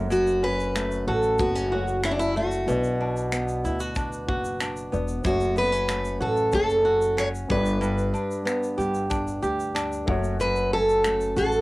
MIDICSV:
0, 0, Header, 1, 6, 480
1, 0, Start_track
1, 0, Tempo, 643087
1, 82, Time_signature, 4, 2, 24, 8
1, 8667, End_track
2, 0, Start_track
2, 0, Title_t, "Steel-string acoustic guitar"
2, 0, Program_c, 0, 25
2, 89, Note_on_c, 0, 66, 79
2, 326, Note_on_c, 0, 71, 90
2, 332, Note_off_c, 0, 66, 0
2, 800, Note_off_c, 0, 71, 0
2, 803, Note_on_c, 0, 69, 73
2, 1043, Note_off_c, 0, 69, 0
2, 1046, Note_on_c, 0, 66, 84
2, 1526, Note_off_c, 0, 66, 0
2, 1529, Note_on_c, 0, 64, 92
2, 1574, Note_off_c, 0, 64, 0
2, 1577, Note_on_c, 0, 62, 75
2, 1627, Note_off_c, 0, 62, 0
2, 1637, Note_on_c, 0, 64, 93
2, 1758, Note_off_c, 0, 64, 0
2, 1770, Note_on_c, 0, 66, 80
2, 3655, Note_off_c, 0, 66, 0
2, 3926, Note_on_c, 0, 66, 77
2, 4147, Note_off_c, 0, 66, 0
2, 4166, Note_on_c, 0, 71, 96
2, 4613, Note_off_c, 0, 71, 0
2, 4641, Note_on_c, 0, 69, 77
2, 4876, Note_off_c, 0, 69, 0
2, 4885, Note_on_c, 0, 69, 88
2, 5366, Note_off_c, 0, 69, 0
2, 5369, Note_on_c, 0, 73, 112
2, 5432, Note_off_c, 0, 73, 0
2, 5608, Note_on_c, 0, 71, 88
2, 7494, Note_off_c, 0, 71, 0
2, 7768, Note_on_c, 0, 71, 83
2, 8008, Note_off_c, 0, 71, 0
2, 8011, Note_on_c, 0, 69, 95
2, 8456, Note_off_c, 0, 69, 0
2, 8493, Note_on_c, 0, 69, 95
2, 8667, Note_off_c, 0, 69, 0
2, 8667, End_track
3, 0, Start_track
3, 0, Title_t, "Upright piano"
3, 0, Program_c, 1, 0
3, 0, Control_c, 1, 64, 127
3, 0, Note_on_c, 1, 57, 68
3, 0, Note_on_c, 1, 61, 69
3, 0, Note_on_c, 1, 66, 65
3, 0, Note_on_c, 1, 73, 76
3, 1246, Note_off_c, 1, 57, 0
3, 1250, Note_off_c, 1, 61, 0
3, 1254, Note_off_c, 1, 66, 0
3, 1260, Note_off_c, 1, 73, 0
3, 1276, Note_on_c, 1, 57, 50
3, 1280, Note_on_c, 1, 61, 49
3, 1284, Note_on_c, 1, 66, 42
3, 1290, Note_on_c, 1, 73, 54
3, 1988, Note_on_c, 1, 59, 51
3, 1995, Note_off_c, 1, 66, 0
3, 1996, Note_on_c, 1, 62, 54
3, 1998, Note_off_c, 1, 57, 0
3, 2000, Note_off_c, 1, 61, 0
3, 2005, Note_off_c, 1, 73, 0
3, 2006, Note_on_c, 1, 66, 49
3, 2011, Control_c, 1, 64, 0
3, 2016, Note_on_c, 1, 74, 67
3, 2159, Control_c, 1, 64, 127
3, 3644, Note_off_c, 1, 59, 0
3, 3648, Note_off_c, 1, 62, 0
3, 3653, Note_off_c, 1, 66, 0
3, 3658, Note_off_c, 1, 74, 0
3, 3673, Note_on_c, 1, 59, 52
3, 3675, Note_on_c, 1, 62, 49
3, 3679, Note_on_c, 1, 66, 50
3, 3687, Note_on_c, 1, 74, 52
3, 3903, Note_on_c, 1, 56, 44
3, 3916, Note_off_c, 1, 59, 0
3, 3916, Note_off_c, 1, 66, 0
3, 3917, Note_on_c, 1, 61, 51
3, 3918, Note_off_c, 1, 62, 0
3, 3923, Note_off_c, 1, 74, 0
3, 3927, Note_on_c, 1, 66, 51
3, 3930, Control_c, 1, 64, 0
3, 3936, Note_on_c, 1, 73, 69
3, 3954, Note_on_c, 1, 57, 54
3, 3960, Note_off_c, 1, 56, 0
3, 4077, Control_c, 1, 64, 127
3, 5568, Note_off_c, 1, 61, 0
3, 5573, Note_off_c, 1, 66, 0
3, 5578, Note_off_c, 1, 73, 0
3, 5586, Note_off_c, 1, 57, 0
3, 5586, Note_on_c, 1, 59, 60
3, 5597, Note_on_c, 1, 62, 53
3, 5604, Note_on_c, 1, 67, 61
3, 5608, Control_c, 1, 64, 0
3, 5614, Note_on_c, 1, 74, 70
3, 5737, Control_c, 1, 64, 127
3, 7483, Note_off_c, 1, 59, 0
3, 7488, Note_off_c, 1, 62, 0
3, 7492, Note_off_c, 1, 67, 0
3, 7497, Note_off_c, 1, 74, 0
3, 7505, Note_on_c, 1, 57, 71
3, 7517, Note_on_c, 1, 61, 66
3, 7528, Control_c, 1, 64, 0
3, 7528, Note_on_c, 1, 66, 71
3, 7538, Note_on_c, 1, 73, 81
3, 7657, Control_c, 1, 64, 127
3, 8667, Note_off_c, 1, 57, 0
3, 8667, Note_off_c, 1, 61, 0
3, 8667, Note_off_c, 1, 66, 0
3, 8667, Note_off_c, 1, 73, 0
3, 8667, End_track
4, 0, Start_track
4, 0, Title_t, "Nylon-string guitar"
4, 0, Program_c, 2, 24
4, 77, Note_on_c, 2, 42, 68
4, 319, Note_on_c, 2, 61, 47
4, 563, Note_on_c, 2, 57, 59
4, 804, Note_on_c, 2, 66, 63
4, 1035, Note_off_c, 2, 61, 0
4, 1038, Note_on_c, 2, 59, 52
4, 1160, Note_off_c, 2, 59, 0
4, 1160, Note_on_c, 2, 61, 51
4, 1280, Note_off_c, 2, 66, 0
4, 1283, Note_on_c, 2, 66, 61
4, 1513, Note_off_c, 2, 61, 0
4, 1522, Note_on_c, 2, 61, 55
4, 1753, Note_off_c, 2, 57, 0
4, 1762, Note_on_c, 2, 57, 53
4, 1998, Note_off_c, 2, 42, 0
4, 1999, Note_on_c, 2, 47, 75
4, 2049, Note_off_c, 2, 57, 0
4, 2049, Note_off_c, 2, 61, 0
4, 2243, Note_on_c, 2, 62, 51
4, 2480, Note_on_c, 2, 59, 52
4, 2720, Note_off_c, 2, 66, 0
4, 2723, Note_on_c, 2, 64, 61
4, 2838, Note_off_c, 2, 64, 0
4, 2838, Note_on_c, 2, 66, 46
4, 2949, Note_off_c, 2, 62, 0
4, 2958, Note_on_c, 2, 62, 55
4, 3188, Note_off_c, 2, 66, 0
4, 3197, Note_on_c, 2, 66, 65
4, 3429, Note_off_c, 2, 62, 0
4, 3438, Note_on_c, 2, 62, 57
4, 3664, Note_off_c, 2, 59, 0
4, 3673, Note_on_c, 2, 59, 48
4, 3913, Note_on_c, 2, 42, 67
4, 3919, Note_off_c, 2, 47, 0
4, 3965, Note_off_c, 2, 59, 0
4, 3967, Note_off_c, 2, 62, 0
4, 4149, Note_on_c, 2, 59, 53
4, 4270, Note_off_c, 2, 59, 0
4, 4270, Note_on_c, 2, 61, 44
4, 4391, Note_on_c, 2, 57, 58
4, 4629, Note_off_c, 2, 66, 0
4, 4632, Note_on_c, 2, 66, 60
4, 4861, Note_off_c, 2, 61, 0
4, 4870, Note_on_c, 2, 61, 55
4, 5103, Note_off_c, 2, 66, 0
4, 5112, Note_on_c, 2, 66, 61
4, 5344, Note_off_c, 2, 61, 0
4, 5353, Note_on_c, 2, 61, 62
4, 5592, Note_off_c, 2, 42, 0
4, 5595, Note_on_c, 2, 43, 74
4, 5643, Note_off_c, 2, 57, 0
4, 5644, Note_off_c, 2, 61, 0
4, 5644, Note_off_c, 2, 66, 0
4, 5820, Note_off_c, 2, 43, 0
4, 5829, Note_on_c, 2, 43, 76
4, 6074, Note_on_c, 2, 62, 54
4, 6310, Note_on_c, 2, 59, 63
4, 6551, Note_on_c, 2, 67, 63
4, 6782, Note_off_c, 2, 62, 0
4, 6791, Note_on_c, 2, 62, 57
4, 7026, Note_off_c, 2, 67, 0
4, 7035, Note_on_c, 2, 67, 65
4, 7266, Note_off_c, 2, 62, 0
4, 7275, Note_on_c, 2, 62, 62
4, 7514, Note_off_c, 2, 43, 0
4, 7517, Note_on_c, 2, 42, 70
4, 7563, Note_off_c, 2, 59, 0
4, 7565, Note_off_c, 2, 62, 0
4, 7565, Note_off_c, 2, 67, 0
4, 7752, Note_off_c, 2, 42, 0
4, 7761, Note_on_c, 2, 42, 72
4, 8009, Note_on_c, 2, 61, 50
4, 8246, Note_on_c, 2, 57, 59
4, 8483, Note_on_c, 2, 66, 66
4, 8667, Note_off_c, 2, 42, 0
4, 8667, Note_off_c, 2, 57, 0
4, 8667, Note_off_c, 2, 61, 0
4, 8667, Note_off_c, 2, 66, 0
4, 8667, End_track
5, 0, Start_track
5, 0, Title_t, "Upright bass"
5, 0, Program_c, 3, 32
5, 0, Note_on_c, 3, 30, 94
5, 772, Note_off_c, 3, 30, 0
5, 800, Note_on_c, 3, 33, 80
5, 1022, Note_off_c, 3, 33, 0
5, 1041, Note_on_c, 3, 30, 93
5, 1971, Note_off_c, 3, 30, 0
5, 1998, Note_on_c, 3, 35, 85
5, 2689, Note_off_c, 3, 35, 0
5, 2720, Note_on_c, 3, 38, 74
5, 3170, Note_off_c, 3, 38, 0
5, 3198, Note_on_c, 3, 30, 70
5, 3649, Note_off_c, 3, 30, 0
5, 3684, Note_on_c, 3, 28, 83
5, 3903, Note_off_c, 3, 28, 0
5, 3918, Note_on_c, 3, 30, 81
5, 4609, Note_off_c, 3, 30, 0
5, 4633, Note_on_c, 3, 33, 82
5, 4857, Note_off_c, 3, 33, 0
5, 4878, Note_on_c, 3, 30, 88
5, 5569, Note_off_c, 3, 30, 0
5, 5599, Note_on_c, 3, 31, 93
5, 6049, Note_off_c, 3, 31, 0
5, 6557, Note_on_c, 3, 31, 83
5, 7008, Note_off_c, 3, 31, 0
5, 7036, Note_on_c, 3, 38, 69
5, 7488, Note_off_c, 3, 38, 0
5, 7522, Note_on_c, 3, 30, 96
5, 8451, Note_off_c, 3, 30, 0
5, 8483, Note_on_c, 3, 33, 88
5, 8667, Note_off_c, 3, 33, 0
5, 8667, End_track
6, 0, Start_track
6, 0, Title_t, "Drums"
6, 83, Note_on_c, 9, 82, 63
6, 157, Note_off_c, 9, 82, 0
6, 202, Note_on_c, 9, 82, 41
6, 276, Note_off_c, 9, 82, 0
6, 446, Note_on_c, 9, 82, 35
6, 521, Note_off_c, 9, 82, 0
6, 565, Note_on_c, 9, 26, 102
6, 566, Note_on_c, 9, 82, 73
6, 639, Note_off_c, 9, 26, 0
6, 641, Note_off_c, 9, 82, 0
6, 683, Note_on_c, 9, 82, 45
6, 758, Note_off_c, 9, 82, 0
6, 915, Note_on_c, 9, 82, 42
6, 990, Note_off_c, 9, 82, 0
6, 1035, Note_on_c, 9, 82, 58
6, 1041, Note_on_c, 9, 36, 92
6, 1110, Note_off_c, 9, 82, 0
6, 1116, Note_off_c, 9, 36, 0
6, 1163, Note_on_c, 9, 82, 49
6, 1238, Note_off_c, 9, 82, 0
6, 1401, Note_on_c, 9, 82, 53
6, 1475, Note_off_c, 9, 82, 0
6, 1520, Note_on_c, 9, 26, 102
6, 1521, Note_on_c, 9, 82, 62
6, 1594, Note_off_c, 9, 26, 0
6, 1596, Note_off_c, 9, 82, 0
6, 1644, Note_on_c, 9, 82, 51
6, 1719, Note_off_c, 9, 82, 0
6, 1875, Note_on_c, 9, 82, 51
6, 1950, Note_off_c, 9, 82, 0
6, 2003, Note_on_c, 9, 82, 55
6, 2077, Note_off_c, 9, 82, 0
6, 2118, Note_on_c, 9, 82, 40
6, 2192, Note_off_c, 9, 82, 0
6, 2363, Note_on_c, 9, 82, 41
6, 2438, Note_off_c, 9, 82, 0
6, 2480, Note_on_c, 9, 26, 98
6, 2482, Note_on_c, 9, 82, 69
6, 2555, Note_off_c, 9, 26, 0
6, 2557, Note_off_c, 9, 82, 0
6, 2599, Note_on_c, 9, 82, 46
6, 2674, Note_off_c, 9, 82, 0
6, 2725, Note_on_c, 9, 82, 48
6, 2799, Note_off_c, 9, 82, 0
6, 2834, Note_on_c, 9, 82, 43
6, 2909, Note_off_c, 9, 82, 0
6, 2951, Note_on_c, 9, 82, 59
6, 2957, Note_on_c, 9, 36, 83
6, 2959, Note_on_c, 9, 26, 32
6, 3025, Note_off_c, 9, 82, 0
6, 3032, Note_off_c, 9, 36, 0
6, 3034, Note_off_c, 9, 26, 0
6, 3079, Note_on_c, 9, 82, 44
6, 3154, Note_off_c, 9, 82, 0
6, 3199, Note_on_c, 9, 36, 73
6, 3273, Note_off_c, 9, 36, 0
6, 3318, Note_on_c, 9, 82, 56
6, 3393, Note_off_c, 9, 82, 0
6, 3437, Note_on_c, 9, 26, 102
6, 3439, Note_on_c, 9, 82, 63
6, 3512, Note_off_c, 9, 26, 0
6, 3513, Note_off_c, 9, 82, 0
6, 3559, Note_on_c, 9, 82, 48
6, 3633, Note_off_c, 9, 82, 0
6, 3680, Note_on_c, 9, 82, 38
6, 3755, Note_off_c, 9, 82, 0
6, 3791, Note_on_c, 9, 82, 51
6, 3866, Note_off_c, 9, 82, 0
6, 3914, Note_on_c, 9, 82, 64
6, 3917, Note_on_c, 9, 36, 106
6, 3989, Note_off_c, 9, 82, 0
6, 3992, Note_off_c, 9, 36, 0
6, 4034, Note_on_c, 9, 82, 40
6, 4108, Note_off_c, 9, 82, 0
6, 4155, Note_on_c, 9, 82, 46
6, 4229, Note_off_c, 9, 82, 0
6, 4279, Note_on_c, 9, 82, 41
6, 4354, Note_off_c, 9, 82, 0
6, 4395, Note_on_c, 9, 26, 107
6, 4397, Note_on_c, 9, 82, 66
6, 4469, Note_off_c, 9, 26, 0
6, 4471, Note_off_c, 9, 82, 0
6, 4515, Note_on_c, 9, 82, 50
6, 4590, Note_off_c, 9, 82, 0
6, 4752, Note_on_c, 9, 82, 39
6, 4827, Note_off_c, 9, 82, 0
6, 4869, Note_on_c, 9, 82, 64
6, 4877, Note_on_c, 9, 36, 91
6, 4944, Note_off_c, 9, 82, 0
6, 4951, Note_off_c, 9, 36, 0
6, 4997, Note_on_c, 9, 82, 43
6, 5071, Note_off_c, 9, 82, 0
6, 5237, Note_on_c, 9, 82, 52
6, 5312, Note_off_c, 9, 82, 0
6, 5362, Note_on_c, 9, 26, 103
6, 5363, Note_on_c, 9, 82, 61
6, 5436, Note_off_c, 9, 26, 0
6, 5438, Note_off_c, 9, 82, 0
6, 5484, Note_on_c, 9, 82, 48
6, 5559, Note_off_c, 9, 82, 0
6, 5598, Note_on_c, 9, 36, 82
6, 5603, Note_on_c, 9, 82, 37
6, 5673, Note_off_c, 9, 36, 0
6, 5678, Note_off_c, 9, 82, 0
6, 5713, Note_on_c, 9, 82, 55
6, 5788, Note_off_c, 9, 82, 0
6, 5840, Note_on_c, 9, 82, 59
6, 5915, Note_off_c, 9, 82, 0
6, 5956, Note_on_c, 9, 82, 42
6, 6031, Note_off_c, 9, 82, 0
6, 6080, Note_on_c, 9, 82, 56
6, 6154, Note_off_c, 9, 82, 0
6, 6203, Note_on_c, 9, 82, 43
6, 6277, Note_off_c, 9, 82, 0
6, 6323, Note_on_c, 9, 26, 111
6, 6325, Note_on_c, 9, 82, 65
6, 6398, Note_off_c, 9, 26, 0
6, 6400, Note_off_c, 9, 82, 0
6, 6443, Note_on_c, 9, 82, 46
6, 6517, Note_off_c, 9, 82, 0
6, 6566, Note_on_c, 9, 82, 47
6, 6641, Note_off_c, 9, 82, 0
6, 6676, Note_on_c, 9, 82, 41
6, 6750, Note_off_c, 9, 82, 0
6, 6797, Note_on_c, 9, 82, 69
6, 6800, Note_on_c, 9, 36, 95
6, 6805, Note_on_c, 9, 26, 30
6, 6871, Note_off_c, 9, 82, 0
6, 6875, Note_off_c, 9, 36, 0
6, 6879, Note_off_c, 9, 26, 0
6, 6924, Note_on_c, 9, 82, 44
6, 6998, Note_off_c, 9, 82, 0
6, 7038, Note_on_c, 9, 82, 44
6, 7112, Note_off_c, 9, 82, 0
6, 7164, Note_on_c, 9, 82, 48
6, 7239, Note_off_c, 9, 82, 0
6, 7285, Note_on_c, 9, 26, 96
6, 7286, Note_on_c, 9, 82, 66
6, 7360, Note_off_c, 9, 26, 0
6, 7361, Note_off_c, 9, 82, 0
6, 7408, Note_on_c, 9, 82, 50
6, 7483, Note_off_c, 9, 82, 0
6, 7522, Note_on_c, 9, 36, 88
6, 7596, Note_off_c, 9, 36, 0
6, 7640, Note_on_c, 9, 82, 57
6, 7715, Note_off_c, 9, 82, 0
6, 7764, Note_on_c, 9, 82, 64
6, 7838, Note_off_c, 9, 82, 0
6, 7881, Note_on_c, 9, 82, 42
6, 7956, Note_off_c, 9, 82, 0
6, 8129, Note_on_c, 9, 82, 39
6, 8204, Note_off_c, 9, 82, 0
6, 8244, Note_on_c, 9, 26, 107
6, 8246, Note_on_c, 9, 82, 68
6, 8319, Note_off_c, 9, 26, 0
6, 8321, Note_off_c, 9, 82, 0
6, 8364, Note_on_c, 9, 82, 50
6, 8439, Note_off_c, 9, 82, 0
6, 8486, Note_on_c, 9, 82, 47
6, 8560, Note_off_c, 9, 82, 0
6, 8598, Note_on_c, 9, 82, 40
6, 8667, Note_off_c, 9, 82, 0
6, 8667, End_track
0, 0, End_of_file